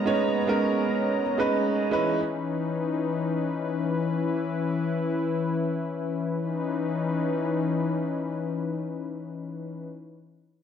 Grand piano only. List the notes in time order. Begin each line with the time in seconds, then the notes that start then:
Already playing: G#3 B3 C#4 D#4 A#4
0.05 G#3 B3 C#4 D#4 C#5
0.47 G#3 B3 C#4 D#4 A#4
1.38 G#3 B3 C#4 D#4 B4
1.91 G#3 C#4 D#4 E4 B4